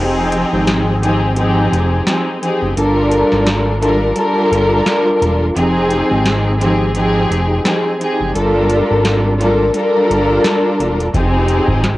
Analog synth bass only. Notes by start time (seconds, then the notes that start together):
0.00 F1
0.53 G#1
1.72 F1
2.62 F#1
2.77 G1
3.32 G#1
4.52 G1
5.21 E1
5.56 F1
6.11 G#1
7.31 F1
8.21 F#1
8.36 G1
8.90 G#1
10.10 G1
10.80 E1
11.14 F1
11.68 G#1